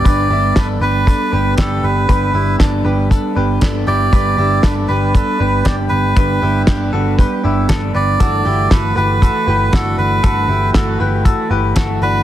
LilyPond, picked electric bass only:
\new Staff \with { instrumentName = "Picked electric bass" } { \clef bass \time 4/4 \key d \mixolydian \tempo 4 = 118 g,,8 g,,8 r8 g,,8. r16 g,,8 r8 g,,8 | g,,8 g,,8 r8 g,,8. r16 g,,8 g,,8 g,,8 | g,,8 g,,8 r8 g,,8. r16 g,,8 r8 g,,8 | g,,8 g,,8 r8 g,,8. r16 g,,8 r8 g,,8 |
g,,8 g,,8 g,,8 g,,8. r16 g,,8 g,,8 g,,8 | g,,8 g,,8 r8 g,,8. r16 g,,8 r8 g,,8 | }